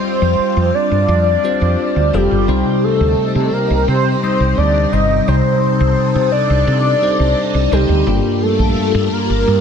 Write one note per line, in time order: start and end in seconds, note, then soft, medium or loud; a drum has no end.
0.00 0.52 G3 medium
0.00 2.45 G3 medium
0.00 0.52 C4 medium
0.00 8.03 C4 medium
0.00 0.52 F4 medium
0.00 2.45 F4 medium
0.00 0.52 C5 medium
0.00 0.76 C5 loud
0.22 0.35 F2 medium
0.39 muted fretless electric bass stroke soft
0.57 0.70 F2 medium
0.74 2.16 D5 loud
0.91 1.05 G2 medium
1.08 1.35 F2 loud
1.43 2.02 G3 medium
1.43 2.02 C4 medium
1.43 2.03 F4 medium
1.43 2.03 C5 medium
1.61 1.75 F2 medium
1.96 2.09 D2 medium
2.13 2.27 F1 medium
2.13 2.43 G3 medium
2.13 2.43 C4 medium
2.13 2.43 F4 medium
2.13 2.85 G4 medium
2.13 2.43 A4 medium
2.31 2.44 G1 medium
2.48 2.61 C2 medium
2.48 8.03 C3 medium
2.48 3.49 C3 medium
2.48 3.65 G3 medium
2.48 3.65 C4 medium
2.48 8.02 D#4 medium
2.48 3.65 D#4 medium
2.48 5.25 G4 medium
2.48 3.66 C5 medium
2.84 3.54 A4 medium
3.01 3.14 D2 medium
3.18 muted fretless electric bass stroke soft
3.35 3.49 C3 medium
3.53 3.88 A#4 medium
3.70 3.84 C2 medium
3.88 4.14 C3 medium
3.88 4.21 C5 medium
4.23 4.81 G3 medium
4.23 4.82 C4 medium
4.23 4.82 D#4 medium
4.23 4.59 C5 medium
4.23 4.82 D#5 medium
4.40 4.54 C2 medium
4.58 4.84 D2 medium
4.58 4.94 D5 medium
4.92 5.19 G1 medium
4.92 5.22 G3 medium
4.92 5.22 C4 medium
4.92 5.22 D#4 medium
4.92 5.22 C5 medium
4.92 5.29 D#5 medium
5.27 5.41 C2 medium
5.27 6.29 C3 medium
5.27 6.44 G3 medium
5.27 6.45 C4 medium
5.27 6.45 D#4 medium
5.27 8.05 A4 medium
5.27 6.31 C5 loud
5.27 6.45 C5 medium
5.80 5.93 C2 medium
5.98 muted fretless electric bass stroke soft
6.15 6.28 C3 medium
6.32 7.74 D5 loud
6.50 6.63 C2 medium
6.67 6.94 C3 loud
7.02 7.61 G3 medium
7.02 7.61 C4 medium
7.02 7.61 D#4 medium
7.02 7.61 C5 medium
7.20 7.33 C2 medium
7.54 7.68 C2 medium
7.72 7.85 C2 medium
7.72 8.01 G3 medium
7.72 8.01 C4 medium
7.72 8.01 D#4 medium
7.72 8.44 G4 medium
7.72 8.02 C5 medium
7.89 8.02 D2 medium
8.07 8.20 G1 loud
8.07 9.08 G2 medium
8.07 9.24 G3 medium
8.07 9.61 G3 medium
8.07 9.61 A#3 medium
8.07 9.24 A#3 medium
8.07 9.61 D4 medium
8.07 9.24 D4 medium
8.07 9.61 F4 medium
8.07 9.24 F4 medium
8.42 9.14 A4 medium
8.59 8.72 A#1 medium
8.77 muted fretless electric bass stroke soft
8.95 9.08 G2 loud
9.12 9.61 A#4 medium
9.30 9.43 G1 medium
9.48 9.61 G2 loud